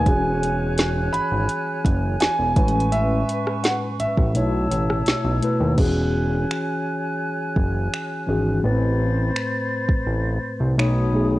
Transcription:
Already playing: C#5 G#5
0.05 E1 E3 C#4 F#4 G#4 G#5 F#6, kick, closed hi-hat
0.43 closed hi-hat
0.78 snare, closed hi-hat
1.13 G#1 B5, closed hi-hat
1.32 G#1
1.49 closed hi-hat
1.85 F#1, kick, closed hi-hat
2.20 E1 G#5, snare, closed hi-hat
2.39 E1
2.55 A1 A2 G#3 C#4 B4 C#6, kick, closed hi-hat
2.68 closed hi-hat
2.80 closed hi-hat
2.92 E5, closed hi-hat
3.29 closed hi-hat
3.47 cross-stick
3.64 F#5, snare, closed hi-hat
4.00 A1 E5, closed hi-hat
4.17 A1, kick
4.34 B1 B2 A3 E4 C#5 A5 E6, closed hi-hat
4.71 A1, closed hi-hat
4.90 cross-stick
5.06 B1, snare, closed hi-hat
5.24 B1
5.41 B2 A3 E4 B4, closed hi-hat
5.60 D#2
5.77 E1 E3 C#4 F#4 G#4 C#5 G#5 F#6, kick, crash
6.51 finger snap
7.56 F#1, kick
7.94 finger snap
8.27 G#1 E3 C#4 F#4 G#4
8.62 A1 A2 A3 B3 B4 C5 B5 A6
8.71 C4
9.36 finger snap
9.89 kick
10.07 A1
10.60 C2
10.77 B1 B2 A3 D#4 C#5 B5 D#6, finger snap
11.12 B2 A3 D#4 G#4

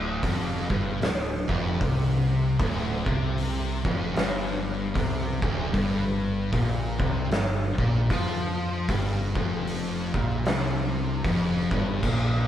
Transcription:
Already playing: D1 D2
0.23 F1 F2, kick, open hi-hat
0.70 G1 G2, kick
1.02 D1 D2, snare, open hi-hat
1.48 F1 F2, kick
1.81 C2 C3, kick, open hi-hat
2.59 D1 D2, kick, open hi-hat
3.06 C2 C3, kick
3.38 open hi-hat
3.85 F1 F2, kick
4.16 G1 G2, snare, open hi-hat
4.95 C2 C3, kick, snare, open hi-hat
5.42 D1 D2, kick
5.73 G1 G2, kick, open hi-hat
6.52 A#1 A#2, kick, open hi-hat
6.98 C2 C3, kick
7.31 G1 G2, snare, open hi-hat
7.78 A#1 A#2, kick
8.10 F2 F3, kick, snare, open hi-hat
8.89 G1 G2, kick, open hi-hat
9.35 F1 F2, kick
9.67 open hi-hat
10.14 A#1 A#2, kick
10.46 C2 C3, snare, open hi-hat
11.24 F1 F2, kick, open hi-hat
11.71 G1 G2, kick
12.02 A#1 A#2, kick, crash

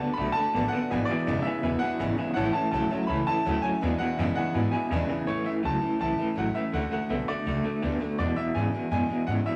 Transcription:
Already playing: A5
0.00 D3 A3 B3 D4 F#4 D5 F#5 A5
0.13 D3 D5 B5
0.17 B1 D3 A3 D4 F#4 F#5 A5
0.32 D3 A3 D5 F#5 A5
0.36 A3 D4 F#4 B5, muted upright bass stroke
0.53 A1 D3 A3 B3 D4 F#4 D5 F#5 A5
0.68 D5 F#5
0.72 D3 B3 D4 F#4 F#5 A5
0.77 A3
0.91 G#1 E2 B2 E3 G#3 D4 E4 B4 E5 G#5
1.05 E2 E4 D5
1.09 B2 E3 G#3 D4 B4 E5 G#5, muted upright bass stroke
1.27 F#1 E2 B2 C#3 E3 G#3 D4 E4 B4 E5 G#5
1.42 E2 C#3 D4 E4 E5
1.47 E3 G#3 B4 E5 G#5
1.63 E1 E2 B2 E3 G#3 D4 E4 B4 E5 G#5
1.79 E2 B2 E4 B4 E5 F#5 G#5, muted upright bass stroke
1.83 E3 G#3 D4
1.99 G#1 E2 B2 C#3 E3 G#3 D4 E4 B4 E5 G#5
2.17 E2 C#3 E3 G#3 D4 E4 B4 E5 G#5
2.34 A1 A2 E3 A3 C#5 E5 F#5 A5
2.38 C#4 E4
2.53 A2 E3 C#4 E4 C#5 E5 A5
2.58 A3
2.71 B1 A2 E3 F#3 A3 C#4 C#5 E5 A5
2.76 E4
2.91 A2 F#3 A3 C#4 E4 C#5 E5 A5, muted upright bass stroke
3.07 C#2 A2 E3 A3 C#5 E5 A5 B5
3.11 C#4 E4
3.27 A2 E3 A3 C#4 E4 C#5 E5 A5, muted upright bass stroke
3.45 D2 A2 E3 F#3 A3 C#4 E4 C#5 E5 F#5
3.62 A2 F#3 C#4 E4 C#5 E5 G#5 A5, muted upright bass stroke
3.66 A3
3.81 E2 B2 E3 G#3 D4 E4 B4 E5 G#5
3.98 E2 B2 G#3 D4 E4 B4 E5 F#5 G#5, muted upright bass stroke
4.03 E3
4.18 E2 F#2 B2 C#3 E3 G#3 D4 E4 B4 E5 G#5
4.35 E2 C#3 G#3 D4 E4 B4 E5 F#5 G#5, muted upright bass stroke
4.39 E3
4.54 E2 G#2 B2 E3 G#3 D4 E4 B4 E5 G#5
4.71 E2 B2 G#3 D4 E4 B4 E5 G#5
4.76 E3
4.91 E2 B2 C#3 E3 G#3 D4 E4 B4 E5 G#5
5.09 E2 C#3 E3 G#3 D4 E4 B4 E5 G#5
5.27 A1 A2 E3 A3 C#4 E4 C#5
5.44 A2 E3 C#4 E4 E5
5.49 A3
5.63 C#2 A2 E3 F#3 A3 C#4 E4 A5
5.81 A2 E3 C#4 E4, muted upright bass stroke
5.85 A3
5.99 B1 A2 E3 A3 C#4 E4 A5
6.18 A2 E3 A3 C#4 E4, muted upright bass stroke
6.35 A1 A2 E3 F#3 A3 C#4 E4 F#5
6.55 A2 E3 A3 C#4 E4 E5
6.73 D2 D3 A3 D4 F#4 F#5
6.90 D3 A3 D4 F#4 F#5, muted upright bass stroke
7.09 B1 D3 A3 B3 D4 F#4 E5
7.27 D3 A3 D4 F#4 D5
7.45 C#2 D3 A3 D4 F#4
7.63 D3 A3 D4 F#4, muted upright bass stroke
7.82 D2 D3 A3 B3 D4 F#4
8.00 D3 A3 D4 F#4, muted upright bass stroke
8.18 E2 B2 E3 G#3 D4 E4 D5
8.36 E2 E3 G#3 D4 E4 E5
8.54 E2 G#2 C#3 E3 G#3 D4 E4 G#5
8.73 E2 B2 E3 G#3 D4 E4
8.91 E2 F#2 B2 E3 G#3 D4 E4 G#5
9.09 E2 B2 E3 G#3 D4 E4, muted upright bass stroke
9.27 E2 G#2 C#3 E3 G#3 D4 F#5
9.31 E4
9.46 E2 B2 E3 G#3 D4 E4 E5, muted upright bass stroke

